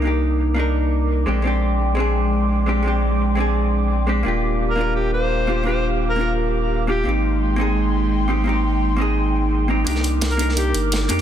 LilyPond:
<<
  \new Staff \with { instrumentName = "Analog synth pad" } { \time 4/4 \key c \minor \tempo 4 = 171 << { d'''1~ | d'''1~ | d'''1~ | d'''1~ |
d'''1 | c'''1~ | c'''1 | d'''1 | } \\ { bes'2.~ bes'8 <aes g'' c'''>8~ | <aes g'' c'''>1~ | <aes g'' c'''>1 | <g' f''>1~ |
<g' f''>1 | <aes g''>1~ | <aes g''>1 | bes'1 | } >> }
  \new Staff \with { instrumentName = "Alto saxophone" } { \time 4/4 \key c \minor r1 | r1 | r1 | r4 r16 bes'8 r16 g'8 c''4. |
c''8 r8. bes'8 r4. r16 g'8 | r1 | r1 | r4 r16 bes'8 r16 g'8 r4. | }
  \new Staff \with { instrumentName = "Hollow-body jazz guitar" } { \time 4/4 \key c \minor <bes d' ees' g'>4. <bes d' ees' bes'>2 <aes c' d' g'>8 | <aes c' d' g'>4. <aes c' d' aes'>2 <aes c' d' g'>8 | <aes c' d' g'>4. <aes c' d' aes'>2 <aes c' d' g'>8 | <bes d' f' g'>4. <bes d' f' bes'>2 <bes d' f' g'>8 |
<bes d' f' g'>4. <bes d' f' bes'>2 <bes d' f' g'>8 | <bes c' ees' g'>4. <bes c' ees' aes'>2 <bes c' ees' g'>8 | <bes c' ees' g'>4. <bes c' ees' aes'>2 <bes c' ees' g'>8 | <bes d' ees' g'>4. <bes d' ees' bes'>2 <bes d' ees' g'>8 | }
  \new Staff \with { instrumentName = "Sub bass" } { \clef bass \time 4/4 \key c \minor c,2.~ c,8 bes,,8~ | bes,,1~ | bes,,1 | ees,,1~ |
ees,,1 | aes,,1~ | aes,,1 | c,2~ c,8 g,,4 f,8 | }
  \new DrumStaff \with { instrumentName = "Drums" } \drummode { \time 4/4 r4 r4 r4 r4 | r4 r4 r4 r4 | r4 r4 r4 r4 | r4 r4 r4 r4 |
r4 r4 r4 r4 | r4 r4 r4 r4 | r4 r4 r4 r4 | hh16 sn16 hh8 <hh sn>16 hh16 hh16 sn16 hh8 hh8 <hh sn>8 hh8 | }
>>